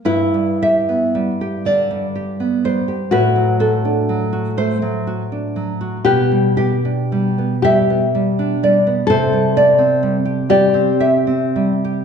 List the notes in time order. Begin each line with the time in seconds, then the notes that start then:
0.05 G2 E4 B4
0.34 G3
0.62 G4 E5
0.89 B3
1.15 G3
1.41 G4
1.65 D3 D4 D5
1.91 G3
2.15 G4
2.40 B3
2.64 G3 C5
2.88 G4
3.11 A2 F#4 B4
3.36 F#3
3.60 F#4 A4
3.85 D4
4.09 F#3
4.33 F#4
4.57 A3 C5
4.82 F#3
5.07 F#4
5.32 D4
5.56 F#3
5.81 F#4
6.05 B2 G4 B4
6.32 G3
6.57 B3 G4
6.85 D4
7.12 G3
7.38 B3
7.62 G3 G4 E5
7.90 B3
8.15 G3
8.39 D4
8.63 G3 D5
8.87 B3
9.07 C3 A4 C5
9.33 G3
9.56 G4 D5
9.78 C4
10.03 G3
10.25 G4
10.49 G3 G4 D5
10.74 C4
11.00 G4 E5
11.27 C4
11.56 G3
11.85 G4